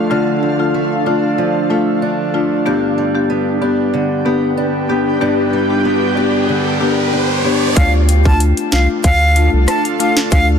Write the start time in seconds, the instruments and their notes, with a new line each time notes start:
Already playing: steel-string acoustic guitar D3 F3 A3 D4, ambient pad D4 F4 A4 F5
0.10 steel-string acoustic guitar D3 D4, marimba A3 D4 F4
0.43 steel-string acoustic guitar F3
0.59 marimba A3 D4 F4
0.74 steel-string acoustic guitar A3
1.06 marimba A3 D4 F4, steel-string acoustic guitar D4
1.38 steel-string acoustic guitar F3
1.70 marimba A3 D4 F4, steel-string acoustic guitar A3
2.02 steel-string acoustic guitar D4
2.34 marimba A3 D4 F4, steel-string acoustic guitar A3
2.66 steel-string acoustic guitar G2 D4, marimba B3 D4 G4, ambient pad G4 B4 G5, riser
2.98 steel-string acoustic guitar G3
3.15 marimba B3 D4 G4
3.30 steel-string acoustic guitar B3
3.61 marimba B3 D4 G4, steel-string acoustic guitar D4
3.94 steel-string acoustic guitar D3
4.25 marimba B3 D4 G4, steel-string acoustic guitar B3
4.57 steel-string acoustic guitar D4
4.89 marimba B3 D4 G4, steel-string acoustic guitar B3
5.21 steel-string acoustic guitar G2 D4, marimba B3 D4 G4
5.53 steel-string acoustic guitar G3
5.70 marimba B3 D4 G4
5.85 steel-string acoustic guitar B3
6.17 marimba B3 D4 G4, steel-string acoustic guitar D4
6.49 steel-string acoustic guitar D3
6.81 marimba B3 D4 G4, steel-string acoustic guitar B3
7.13 steel-string acoustic guitar D4
7.44 marimba B3 D4 G4, steel-string acoustic guitar B3
7.76 sub bass D2, marimba A3 D4 F4, ambient pad D4 F4 A4 F5, flute F5, kick, closed hi-hat
8.09 closed hi-hat
8.25 marimba A3 D4 F4, flute A5, kick
8.40 closed hi-hat
8.57 closed hi-hat
8.72 sub bass C2, marimba A3 D4 F4, flute F5, snare, closed hi-hat
9.04 sub bass D2, flute F5, kick, closed hi-hat
9.36 marimba A3 D4 F4, closed hi-hat
9.53 sub bass C2
9.68 flute A5, cross-stick, closed hi-hat
9.85 closed hi-hat
10.00 marimba A3 D4 F4, flute F5, closed hi-hat
10.17 snare
10.32 sub bass D2, marimba A3 D4 F4, flute F5, kick, closed hi-hat